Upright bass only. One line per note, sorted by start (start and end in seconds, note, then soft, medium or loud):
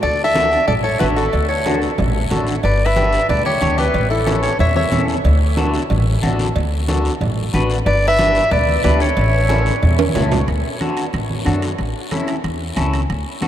0.03 0.55 D2 medium
0.68 0.94 A1 loud
1.01 1.27 A1 medium
1.33 1.86 D2 loud
1.99 2.25 A1 loud
2.31 2.57 A1 medium
2.64 3.16 G1 loud
3.29 3.55 D2 loud
3.62 3.88 D2 medium
3.94 4.47 A1 loud
4.59 4.86 E2 medium
4.92 5.18 E2 medium
5.24 5.77 D2 loud
5.91 6.17 A1 loud
6.23 6.49 A1 medium
6.56 7.08 D2 loud
7.21 7.47 A1 medium
7.54 7.80 A1 medium
7.86 8.38 G1 loud
8.51 8.78 D2 loud
8.84 9.11 D2 medium
9.17 9.69 A1 loud
9.83 10.09 E2 loud
10.15 10.41 C#2 medium
10.48 10.61 D2 medium
11.14 11.40 A1 medium
11.46 11.72 F#2 medium
11.79 11.92 A1 medium
12.44 12.70 E2 medium
12.77 13.03 C#2 medium
13.10 13.23 D2 loud